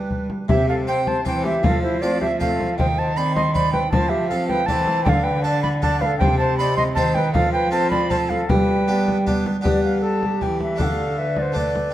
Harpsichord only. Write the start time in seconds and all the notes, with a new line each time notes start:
Already playing: G3 D4 B4
0.48 C3
0.87 C4 C5
1.25 E3 C4 C5
1.63 F3
2.02 A3 C4 C5
2.40 A3 C4 C5
2.78 D#3
3.16 C4 C5
3.55 C4 C5
3.93 F3
4.31 C4 A4
4.68 E3 C4 A4
5.06 D3
5.44 D4 A4
5.82 D4 A4
6.21 C3
6.59 C4 D#4 C5
6.96 D#3 C4 D#4 C5
7.34 F3
7.71 C4 F4 A4
8.10 C4 F4 A4
8.50 G3
8.88 B3 D4 G4
9.26 B3 D4 G4
9.61 G3 B3 D4 G4
10.41 E3
10.76 A3 D4 A4
10.80 D3
11.52 A3 D4 A4
11.91 C4